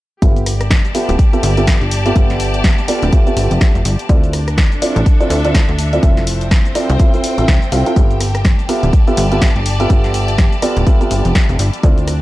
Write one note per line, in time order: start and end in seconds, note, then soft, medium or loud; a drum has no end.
0.22 0.81 G1 medium
0.22 0.50 B3 medium
0.22 0.50 F4 medium
0.22 0.50 G4 medium
0.22 4.87 G4 medium
0.22 0.50 A4 medium
0.22 0.50 E5 medium
0.22 kick loud
0.22 closed hi-hat medium
0.22 shaker soft
0.36 closed hi-hat soft
0.36 shaker soft
0.46 cross-stick medium
0.46 open hi-hat loud
0.46 shaker medium
0.56 4.87 D5 medium
0.61 4.87 A5 medium
0.61 cross-stick medium
0.61 closed hi-hat medium
0.61 shaker soft
0.71 kick loud
0.71 snare loud
0.71 closed hi-hat medium
0.71 shaker soft
0.85 closed hi-hat soft
0.85 shaker soft
0.95 1.13 B3 medium
0.95 1.13 F4 medium
0.95 1.13 G4 medium
0.95 1.13 A4 medium
0.95 1.13 E5 medium
0.95 open hi-hat loud
0.95 shaker medium
1.09 1.17 D1 loud
1.09 closed hi-hat medium
1.09 shaker soft
1.19 kick loud
1.19 closed hi-hat medium
1.19 shaker soft
1.33 1.49 B3 medium
1.33 1.49 F4 medium
1.33 1.49 G4 medium
1.33 1.49 A4 medium
1.33 1.49 E5 loud
1.33 closed hi-hat soft
1.33 shaker soft
1.43 1.78 G1 loud
1.43 open hi-hat loud
1.43 shaker medium
1.57 1.73 B3 medium
1.57 1.73 F4 medium
1.57 1.73 G4 medium
1.57 1.73 A4 medium
1.57 1.73 E5 medium
1.57 closed hi-hat medium
1.57 shaker soft
1.67 kick loud
1.67 snare loud
1.67 open hi-hat medium
1.67 shaker soft
1.81 2.13 G1 medium
1.81 closed hi-hat soft
1.91 open hi-hat loud
1.91 shaker medium
2.06 2.14 B3 medium
2.06 2.14 F4 medium
2.06 2.14 G4 medium
2.06 2.14 A4 medium
2.06 2.14 E5 medium
2.06 closed hi-hat medium
2.06 shaker soft
2.16 2.74 G1 loud
2.16 2.86 B3 medium
2.16 2.86 F4 medium
2.16 2.86 A4 medium
2.16 2.86 E5 medium
2.16 kick loud
2.16 closed hi-hat medium
2.16 shaker soft
2.30 snare soft
2.30 closed hi-hat soft
2.30 shaker soft
2.40 open hi-hat loud
2.40 shaker medium
2.54 closed hi-hat medium
2.54 shaker soft
2.64 kick loud
2.64 snare loud
2.64 closed hi-hat soft
2.64 shaker soft
2.78 closed hi-hat soft
2.78 shaker soft
2.88 3.06 B3 medium
2.88 3.06 F4 medium
2.88 3.06 G4 medium
2.88 3.06 A4 medium
2.88 3.06 D5 medium
2.88 cross-stick medium
2.88 open hi-hat loud
2.88 shaker medium
3.03 3.11 D1 loud
3.03 closed hi-hat soft
3.03 shaker soft
3.12 3.25 B3 medium
3.12 3.25 F4 medium
3.12 3.25 G4 medium
3.12 3.25 A4 medium
3.12 3.25 E5 medium
3.12 kick loud
3.12 closed hi-hat medium
3.12 shaker soft
3.27 4.07 B3 medium
3.27 4.07 F4 medium
3.27 4.07 G4 medium
3.27 4.07 A4 medium
3.27 4.07 E5 medium
3.27 closed hi-hat soft
3.27 shaker soft
3.37 3.48 G1 medium
3.37 open hi-hat loud
3.37 shaker medium
3.51 3.59 F1 medium
3.51 closed hi-hat medium
3.51 shaker soft
3.61 kick loud
3.61 snare loud
3.61 closed hi-hat medium
3.61 shaker soft
3.75 3.83 F1 loud
3.75 closed hi-hat soft
3.75 shaker soft
3.85 3.97 G1 medium
3.85 open hi-hat loud
3.85 shaker medium
3.99 closed hi-hat soft
3.99 shaker soft
4.09 4.68 D2 loud
4.09 4.37 C4 medium
4.09 6.81 D4 medium
4.09 4.37 E4 medium
4.09 4.37 F4 medium
4.09 4.37 A4 medium
4.09 4.37 D5 medium
4.09 kick loud
4.09 closed hi-hat soft
4.09 shaker soft
4.24 closed hi-hat soft
4.24 shaker soft
4.33 cross-stick medium
4.33 open hi-hat loud
4.33 shaker medium
4.47 6.81 A4 medium
4.47 cross-stick medium
4.47 closed hi-hat soft
4.47 shaker soft
4.58 kick loud
4.58 snare loud
4.58 closed hi-hat soft
4.58 shaker soft
4.72 closed hi-hat soft
4.72 shaker soft
4.81 5.00 C4 medium
4.81 5.00 E4 medium
4.81 5.00 F4 medium
4.81 5.00 A4 medium
4.81 5.00 D5 medium
4.81 6.81 E5 medium
4.81 open hi-hat loud
4.81 shaker medium
4.96 5.04 A1 loud
4.96 closed hi-hat soft
4.96 shaker soft
5.06 kick loud
5.06 closed hi-hat soft
5.06 shaker soft
5.20 5.36 C4 medium
5.20 5.36 E4 medium
5.20 5.36 F4 medium
5.20 5.36 A4 medium
5.20 5.36 D5 loud
5.20 closed hi-hat soft
5.20 shaker soft
5.30 5.65 D2 loud
5.30 open hi-hat loud
5.30 shaker medium
5.45 5.60 C4 medium
5.45 5.60 E4 medium
5.45 5.60 F4 medium
5.45 5.60 A4 medium
5.45 5.60 D5 medium
5.45 closed hi-hat soft
5.45 shaker soft
5.54 kick loud
5.54 snare loud
5.54 open hi-hat medium
5.54 shaker soft
5.69 6.00 D2 medium
5.69 closed hi-hat soft
5.79 open hi-hat loud
5.79 shaker medium
5.93 6.01 C4 medium
5.93 6.01 E4 medium
5.93 6.01 F4 medium
5.93 6.01 A4 medium
5.93 6.01 D5 medium
5.93 closed hi-hat soft
5.93 shaker soft
6.03 6.61 F1 loud
6.03 8.91 C4 medium
6.03 6.73 C4 medium
6.03 6.73 E4 medium
6.03 6.73 F4 medium
6.03 6.73 A4 medium
6.03 6.73 E5 medium
6.03 kick loud
6.03 closed hi-hat soft
6.03 shaker soft
6.17 snare soft
6.17 closed hi-hat soft
6.17 shaker soft
6.25 7.96 C5 medium
6.25 open hi-hat loud
6.25 shaker medium
6.34 9.25 G5 medium
6.41 closed hi-hat soft
6.41 shaker soft
6.51 kick loud
6.51 snare loud
6.51 closed hi-hat soft
6.51 shaker soft
6.65 closed hi-hat soft
6.65 shaker soft
6.75 6.94 C4 medium
6.75 6.94 E4 medium
6.75 6.94 F4 medium
6.75 6.94 A4 medium
6.75 6.94 D5 medium
6.75 cross-stick medium
6.75 open hi-hat loud
6.75 shaker medium
6.90 6.98 C2 loud
6.90 closed hi-hat soft
6.90 shaker soft
6.99 7.12 C4 medium
6.99 7.12 E4 medium
6.99 7.12 F4 medium
6.99 7.12 A4 medium
6.99 7.12 E5 medium
6.99 kick loud
6.99 closed hi-hat soft
6.99 shaker soft
7.14 7.35 C4 medium
7.14 7.35 E4 medium
7.14 7.35 F4 medium
7.14 7.35 A4 medium
7.14 7.35 E5 medium
7.14 closed hi-hat soft
7.14 shaker soft
7.24 open hi-hat loud
7.24 shaker medium
7.38 7.46 A1 medium
7.38 7.54 C4 medium
7.38 7.54 E4 medium
7.38 7.54 F4 medium
7.38 7.54 A4 medium
7.38 7.54 E5 medium
7.38 closed hi-hat soft
7.38 shaker soft
7.48 7.60 C2 medium
7.48 kick loud
7.48 snare loud
7.48 closed hi-hat soft
7.48 shaker soft
7.62 closed hi-hat soft
7.62 shaker soft
7.72 7.84 C2 medium
7.72 7.84 C4 medium
7.72 7.84 E4 medium
7.72 7.84 F4 medium
7.72 7.84 A4 medium
7.72 7.84 F5 medium
7.72 open hi-hat loud
7.72 shaker medium
7.86 7.95 C4 medium
7.86 7.95 E4 medium
7.86 7.95 F4 medium
7.86 7.95 A4 medium
7.86 7.95 F5 loud
7.86 closed hi-hat soft
7.86 shaker soft
7.96 8.55 G1 loud
7.96 8.24 B3 medium
7.96 8.24 F4 medium
7.96 8.24 G4 medium
7.96 12.22 G4 medium
7.96 8.24 A4 medium
7.96 8.24 E5 medium
7.96 kick loud
7.96 closed hi-hat soft
7.96 shaker soft
8.10 12.22 A5 medium
8.10 closed hi-hat soft
8.10 shaker soft
8.21 cross-stick medium
8.21 open hi-hat loud
8.21 shaker medium
8.35 12.22 D5 medium
8.35 cross-stick medium
8.35 closed hi-hat soft
8.35 shaker soft
8.45 kick loud
8.45 snare loud
8.45 closed hi-hat soft
8.45 shaker soft
8.59 closed hi-hat soft
8.59 shaker soft
8.69 8.87 B3 medium
8.69 8.87 F4 medium
8.69 8.87 G4 medium
8.69 8.87 A4 medium
8.69 8.87 E5 medium
8.69 open hi-hat loud
8.69 shaker medium
8.83 8.91 D1 loud
8.83 closed hi-hat soft
8.83 shaker soft
8.93 kick loud
8.93 closed hi-hat soft
8.93 shaker soft
9.07 9.23 B3 medium
9.07 9.23 F4 medium
9.07 9.23 G4 medium
9.07 9.23 A4 medium
9.07 9.23 E5 loud
9.07 closed hi-hat soft
9.07 shaker soft
9.17 9.52 G1 loud
9.17 open hi-hat loud
9.17 shaker medium
9.32 9.47 B3 medium
9.32 9.47 F4 medium
9.32 9.47 G4 medium
9.32 9.47 A4 medium
9.32 9.47 E5 medium
9.32 closed hi-hat soft
9.32 shaker soft
9.42 kick loud
9.42 snare loud
9.42 open hi-hat medium
9.42 shaker soft
9.56 9.87 G1 medium
9.56 closed hi-hat soft
9.66 open hi-hat loud
9.66 shaker medium
9.80 9.88 B3 medium
9.80 9.88 F4 medium
9.80 9.88 G4 medium
9.80 9.88 A4 medium
9.80 9.88 E5 medium
9.80 closed hi-hat soft
9.80 shaker soft
9.90 10.49 G1 medium
9.90 10.60 B3 medium
9.90 10.60 F4 medium
9.90 10.60 G4 medium
9.90 10.60 A4 medium
9.90 10.60 E5 medium
9.90 kick loud
9.90 closed hi-hat medium
9.90 shaker soft
10.04 snare soft
10.04 closed hi-hat soft
10.04 shaker soft
10.14 open hi-hat loud
10.14 shaker medium
10.28 closed hi-hat medium
10.28 shaker soft
10.38 kick loud
10.38 snare loud
10.38 closed hi-hat soft
10.38 shaker soft
10.52 closed hi-hat soft
10.52 shaker soft
10.62 10.81 B3 medium
10.62 10.81 F4 medium
10.62 10.81 G4 medium
10.62 10.81 A4 medium
10.62 10.81 D5 medium
10.62 cross-stick medium
10.62 open hi-hat loud
10.62 shaker medium
10.77 10.85 D1 loud
10.77 closed hi-hat soft
10.77 shaker soft
10.86 10.99 B3 medium
10.86 10.99 F4 medium
10.86 10.99 G4 medium
10.86 10.99 A4 medium
10.86 10.99 E5 medium
10.86 kick loud
10.86 closed hi-hat medium
10.86 shaker soft
11.01 11.81 B3 medium
11.01 11.81 F4 medium
11.01 11.81 G4 medium
11.01 11.81 A4 medium
11.01 11.81 E5 medium
11.01 closed hi-hat soft
11.01 shaker soft
11.11 11.23 G1 medium
11.11 open hi-hat loud
11.11 shaker medium
11.25 11.33 F1 medium
11.25 closed hi-hat soft
11.25 shaker soft
11.35 kick loud
11.35 snare loud
11.35 closed hi-hat medium
11.35 shaker soft
11.49 11.57 F1 loud
11.49 closed hi-hat soft
11.49 shaker soft
11.59 11.71 G1 medium
11.59 open hi-hat loud
11.59 shaker medium
11.73 closed hi-hat soft
11.73 shaker soft
11.83 12.22 D2 medium
11.83 12.11 C4 medium
11.83 12.22 D4 medium
11.83 12.11 E4 medium
11.83 12.11 F4 medium
11.83 12.11 A4 medium
11.83 12.11 D5 medium
11.83 kick loud
11.83 closed hi-hat medium
11.83 shaker soft
11.98 closed hi-hat soft
11.98 shaker soft
12.08 cross-stick medium
12.08 open hi-hat loud
12.08 shaker medium